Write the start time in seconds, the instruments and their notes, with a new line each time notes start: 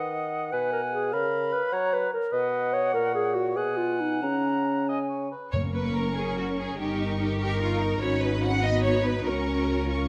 Already playing: bassoon D#3, clarinet B4, cor anglais D#5, flute F#5
0.52 bassoon B2, clarinet B4, cor anglais F#5, flute G#5
0.72 clarinet A#4
0.92 clarinet G#4
1.12 bassoon C#3, clarinet A#4, cor anglais F5, flute B5
1.53 clarinet B4
1.72 bassoon F#3, clarinet C#5, cor anglais F#5, flute A#5
1.93 clarinet B4
2.13 clarinet A#4
2.32 bassoon B2, clarinet B4, cor anglais D#5, flute F#5
2.73 clarinet C#5
2.93 bassoon A#2, clarinet A#4, cor anglais C#5
3.15 clarinet G#4
3.35 clarinet F#4
3.56 bassoon B2, clarinet G#4, cor anglais F#5, flute G#5
3.77 clarinet F4
4.00 clarinet D#4
4.22 bassoon C#3, clarinet C#4, flute A#5
4.88 cor anglais D#5, flute G#5
5.09 cor anglais C#5
5.31 cor anglais B4
5.52 double bass section F#1, timpani F#2, cello section A#3, viola section C#4 A#4, violin section C#5 C#6
5.74 violin section B4
5.95 violin section A#4
6.16 cello section C#4, violin section G#4
6.37 violin section F#4
6.58 violin section G#4
6.78 double bass section G1, cello section D#4, viola section D#4 A#4, violin section G4 C#6
7.19 violin section G4
7.40 viola section D#4 A#4, cello section G4, violin section A#4 C#6
7.62 cello section F4
7.82 cello section D#4
8.01 double bass section G#1, cello section C#4, viola section D#4 F#4, violin section C#5 B5
8.22 violin section B4
8.42 violin section F#5
8.62 cello section B3, viola section D#4 F#4, violin section D#5 B5
8.83 violin section C#5
9.03 violin section B4
9.25 double bass section C#2, cello section C#4, viola section C#4 F#4, violin section A#4 C#6
9.89 viola section C#4 F4, violin section C#6